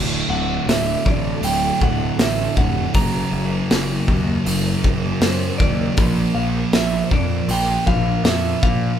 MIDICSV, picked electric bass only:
0, 0, Header, 1, 2, 480
1, 0, Start_track
1, 0, Tempo, 756620
1, 1875, Time_signature, 4, 2, 24, 8
1, 5706, End_track
2, 0, Start_track
2, 0, Title_t, "Picked electric bass"
2, 0, Program_c, 0, 34
2, 0, Note_on_c, 0, 26, 106
2, 132, Note_off_c, 0, 26, 0
2, 181, Note_on_c, 0, 26, 87
2, 364, Note_off_c, 0, 26, 0
2, 419, Note_on_c, 0, 26, 80
2, 602, Note_off_c, 0, 26, 0
2, 672, Note_on_c, 0, 33, 85
2, 851, Note_off_c, 0, 33, 0
2, 898, Note_on_c, 0, 26, 83
2, 1082, Note_off_c, 0, 26, 0
2, 1148, Note_on_c, 0, 26, 88
2, 1328, Note_off_c, 0, 26, 0
2, 1384, Note_on_c, 0, 33, 89
2, 1566, Note_off_c, 0, 33, 0
2, 1627, Note_on_c, 0, 29, 83
2, 1807, Note_off_c, 0, 29, 0
2, 1866, Note_on_c, 0, 30, 94
2, 2047, Note_off_c, 0, 30, 0
2, 2106, Note_on_c, 0, 30, 98
2, 2287, Note_off_c, 0, 30, 0
2, 2353, Note_on_c, 0, 30, 94
2, 2531, Note_off_c, 0, 30, 0
2, 2588, Note_on_c, 0, 39, 82
2, 2768, Note_off_c, 0, 39, 0
2, 2825, Note_on_c, 0, 30, 88
2, 3006, Note_off_c, 0, 30, 0
2, 3067, Note_on_c, 0, 30, 87
2, 3247, Note_off_c, 0, 30, 0
2, 3305, Note_on_c, 0, 42, 96
2, 3486, Note_off_c, 0, 42, 0
2, 3551, Note_on_c, 0, 39, 86
2, 3730, Note_off_c, 0, 39, 0
2, 3792, Note_on_c, 0, 34, 98
2, 3970, Note_off_c, 0, 34, 0
2, 4026, Note_on_c, 0, 34, 91
2, 4206, Note_off_c, 0, 34, 0
2, 4268, Note_on_c, 0, 34, 83
2, 4448, Note_off_c, 0, 34, 0
2, 4513, Note_on_c, 0, 41, 84
2, 4691, Note_off_c, 0, 41, 0
2, 4746, Note_on_c, 0, 34, 95
2, 4926, Note_off_c, 0, 34, 0
2, 4989, Note_on_c, 0, 34, 99
2, 5168, Note_off_c, 0, 34, 0
2, 5226, Note_on_c, 0, 41, 87
2, 5406, Note_off_c, 0, 41, 0
2, 5474, Note_on_c, 0, 46, 74
2, 5651, Note_off_c, 0, 46, 0
2, 5706, End_track
0, 0, End_of_file